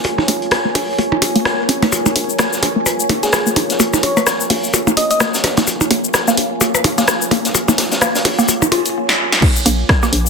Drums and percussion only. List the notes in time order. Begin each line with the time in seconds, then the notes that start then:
0.04 closed hi-hat, percussion blips
0.18 snare, percussion blips
0.28 closed hi-hat, open hi-hat, percussion blips
0.42 closed hi-hat
0.51 cross-stick, snare, closed hi-hat, percussion blips
0.75 open hi-hat, percussion blips
0.98 closed hi-hat, percussion blips
1.12 percussion blips
1.22 closed hi-hat, open hi-hat, percussion blips
1.36 open hi-hat
1.45 cross-stick, snare, closed hi-hat, percussion blips
1.69 closed hi-hat, open hi-hat, percussion blips
1.82 snare, open hi-hat, percussion blips
1.92 closed hi-hat, percussion blips, shaker
2.06 closed hi-hat, percussion blips, shaker
2.16 closed hi-hat, open hi-hat, percussion blips
2.29 shaker
2.38 cross-stick, snare, closed hi-hat, percussion blips, shaker
2.53 snare, shaker
2.62 closed hi-hat, open hi-hat, percussion blips
2.86 closed hi-hat, percussion blips, shaker
3.00 shaker
3.09 closed hi-hat, open hi-hat, percussion blips
3.23 snare, open hi-hat, shaker
3.32 cross-stick, snare, closed hi-hat, percussion blips, shaker
3.47 shaker
3.56 closed hi-hat, open hi-hat, percussion blips
3.70 snare, open hi-hat, shaker
3.80 closed hi-hat, percussion blips, shaker
3.93 snare, percussion blips, shaker
4.03 closed hi-hat, open hi-hat, percussion blips
4.17 closed hi-hat, percussion blips, shaker
4.27 cross-stick, snare, closed hi-hat, percussion blips, shaker
4.40 shaker
4.50 open hi-hat, percussion blips
4.64 shaker
4.74 closed hi-hat, percussion blips, shaker
4.87 percussion blips, shaker
4.97 closed hi-hat, open hi-hat, percussion blips
5.11 open hi-hat, shaker
5.20 cross-stick, snare, closed hi-hat, percussion blips, shaker
5.34 snare, closed hi-hat, shaker
5.44 snare, closed hi-hat, open hi-hat, percussion blips
5.57 snare, closed hi-hat, open hi-hat, percussion blips, shaker
5.67 closed hi-hat, percussion blips, shaker
5.81 closed hi-hat, percussion blips, shaker
5.91 closed hi-hat, open hi-hat, percussion blips
6.04 shaker
6.14 cross-stick, snare, closed hi-hat, percussion blips, shaker
6.28 snare, shaker
6.37 closed hi-hat, open hi-hat, percussion blips
6.61 closed hi-hat, percussion blips, shaker
6.75 percussion blips, shaker
6.84 closed hi-hat, open hi-hat, percussion blips
6.98 snare, open hi-hat, shaker
7.07 cross-stick, snare, closed hi-hat, percussion blips, shaker
7.22 shaker
7.31 closed hi-hat, open hi-hat, percussion blips
7.45 snare, open hi-hat, shaker
7.54 closed hi-hat, percussion blips, shaker
7.68 snare, percussion blips, shaker
7.78 snare, closed hi-hat, open hi-hat, percussion blips
7.91 snare, closed hi-hat, shaker
8.01 cross-stick, snare, closed hi-hat, percussion blips, shaker
8.15 snare, closed hi-hat, shaker
8.25 open hi-hat, percussion blips
8.39 shaker
8.48 closed hi-hat, percussion blips, shaker
8.62 percussion blips, shaker
8.72 closed hi-hat, open hi-hat, percussion blips
8.86 open hi-hat, shaker
9.09 snare
9.32 snare
9.42 kick, closed hi-hat, crash, percussion blips
9.56 closed hi-hat, shaker
9.65 closed hi-hat, open hi-hat, shaker
9.89 kick, cross-stick, snare, closed hi-hat
10.03 snare, percussion blips, shaker
10.13 closed hi-hat, open hi-hat
10.26 shaker